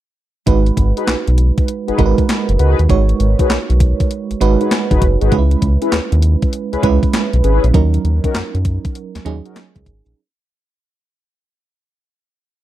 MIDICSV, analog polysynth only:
0, 0, Header, 1, 2, 480
1, 0, Start_track
1, 0, Key_signature, 5, "minor"
1, 0, Tempo, 606061
1, 371, Time_signature, 4, 2, 24, 8
1, 10007, End_track
2, 0, Start_track
2, 0, Title_t, "Analog polysynth"
2, 0, Program_c, 0, 90
2, 764, Note_on_c, 0, 63, 71
2, 766, Note_on_c, 0, 66, 65
2, 768, Note_on_c, 0, 68, 67
2, 770, Note_on_c, 0, 71, 83
2, 866, Note_off_c, 0, 63, 0
2, 866, Note_off_c, 0, 66, 0
2, 867, Note_off_c, 0, 68, 0
2, 868, Note_off_c, 0, 71, 0
2, 1485, Note_on_c, 0, 63, 74
2, 1486, Note_on_c, 0, 66, 69
2, 1488, Note_on_c, 0, 68, 66
2, 1489, Note_on_c, 0, 71, 85
2, 1586, Note_off_c, 0, 63, 0
2, 1587, Note_off_c, 0, 66, 0
2, 1587, Note_off_c, 0, 68, 0
2, 1588, Note_off_c, 0, 71, 0
2, 2048, Note_on_c, 0, 63, 70
2, 2050, Note_on_c, 0, 66, 66
2, 2052, Note_on_c, 0, 68, 64
2, 2053, Note_on_c, 0, 71, 83
2, 2214, Note_off_c, 0, 63, 0
2, 2215, Note_off_c, 0, 66, 0
2, 2216, Note_off_c, 0, 68, 0
2, 2217, Note_off_c, 0, 71, 0
2, 2685, Note_on_c, 0, 63, 75
2, 2687, Note_on_c, 0, 66, 70
2, 2688, Note_on_c, 0, 68, 72
2, 2690, Note_on_c, 0, 71, 88
2, 2786, Note_off_c, 0, 63, 0
2, 2787, Note_off_c, 0, 66, 0
2, 2788, Note_off_c, 0, 68, 0
2, 2788, Note_off_c, 0, 71, 0
2, 3645, Note_on_c, 0, 63, 73
2, 3647, Note_on_c, 0, 66, 70
2, 3649, Note_on_c, 0, 68, 68
2, 3650, Note_on_c, 0, 71, 81
2, 3746, Note_off_c, 0, 63, 0
2, 3747, Note_off_c, 0, 66, 0
2, 3748, Note_off_c, 0, 68, 0
2, 3749, Note_off_c, 0, 71, 0
2, 3884, Note_on_c, 0, 63, 78
2, 3886, Note_on_c, 0, 66, 65
2, 3888, Note_on_c, 0, 68, 63
2, 3890, Note_on_c, 0, 71, 86
2, 3986, Note_off_c, 0, 63, 0
2, 3987, Note_off_c, 0, 66, 0
2, 3987, Note_off_c, 0, 68, 0
2, 3988, Note_off_c, 0, 71, 0
2, 4125, Note_on_c, 0, 63, 76
2, 4126, Note_on_c, 0, 66, 71
2, 4128, Note_on_c, 0, 68, 65
2, 4130, Note_on_c, 0, 71, 79
2, 4226, Note_off_c, 0, 63, 0
2, 4227, Note_off_c, 0, 66, 0
2, 4227, Note_off_c, 0, 68, 0
2, 4228, Note_off_c, 0, 71, 0
2, 4604, Note_on_c, 0, 61, 75
2, 4606, Note_on_c, 0, 64, 70
2, 4607, Note_on_c, 0, 68, 68
2, 4609, Note_on_c, 0, 71, 90
2, 4706, Note_off_c, 0, 61, 0
2, 4706, Note_off_c, 0, 64, 0
2, 4707, Note_off_c, 0, 68, 0
2, 4708, Note_off_c, 0, 71, 0
2, 5324, Note_on_c, 0, 61, 74
2, 5326, Note_on_c, 0, 64, 66
2, 5327, Note_on_c, 0, 68, 71
2, 5329, Note_on_c, 0, 71, 86
2, 5426, Note_off_c, 0, 61, 0
2, 5427, Note_off_c, 0, 64, 0
2, 5427, Note_off_c, 0, 68, 0
2, 5428, Note_off_c, 0, 71, 0
2, 5888, Note_on_c, 0, 61, 70
2, 5890, Note_on_c, 0, 64, 67
2, 5891, Note_on_c, 0, 68, 70
2, 5893, Note_on_c, 0, 71, 83
2, 6054, Note_off_c, 0, 61, 0
2, 6055, Note_off_c, 0, 64, 0
2, 6056, Note_off_c, 0, 68, 0
2, 6057, Note_off_c, 0, 71, 0
2, 6526, Note_on_c, 0, 61, 78
2, 6527, Note_on_c, 0, 63, 68
2, 6529, Note_on_c, 0, 66, 70
2, 6530, Note_on_c, 0, 70, 82
2, 6626, Note_off_c, 0, 61, 0
2, 6627, Note_off_c, 0, 63, 0
2, 6628, Note_off_c, 0, 66, 0
2, 6628, Note_off_c, 0, 70, 0
2, 7484, Note_on_c, 0, 61, 75
2, 7487, Note_on_c, 0, 63, 72
2, 7488, Note_on_c, 0, 66, 68
2, 7490, Note_on_c, 0, 70, 83
2, 7586, Note_off_c, 0, 61, 0
2, 7587, Note_off_c, 0, 63, 0
2, 7587, Note_off_c, 0, 66, 0
2, 7588, Note_off_c, 0, 70, 0
2, 10007, End_track
0, 0, End_of_file